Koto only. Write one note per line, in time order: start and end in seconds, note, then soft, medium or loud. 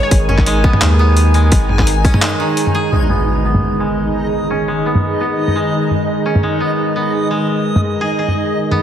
0.00 0.46 G#3 medium
0.00 0.64 B3 medium
0.00 0.28 C#4 medium
0.29 2.04 C#4 medium
0.47 1.33 G#3 medium
0.64 0.99 B3 medium
0.99 3.09 B3 medium
1.34 2.21 G#3 medium
2.05 4.50 C#4 medium
2.22 2.45 G#3 medium
2.40 2.97 D#3 medium
2.75 4.72 G#4 medium
2.92 3.79 G#3 medium
3.10 3.45 B3 medium
3.45 4.85 B3 medium
3.80 4.67 G#3 medium
4.50 6.25 C#4 medium
4.68 5.54 G#3 medium
4.86 5.20 B3 medium
5.20 6.60 B3 medium
5.56 6.42 G#3 medium
6.26 8.77 C#4 medium
6.43 7.29 G#3 medium
6.60 6.95 B3 medium
6.96 8.71 B3 medium
7.31 8.82 G#3 medium
8.01 8.18 G#4 medium
8.19 8.82 G#4 medium
8.71 8.82 B3 medium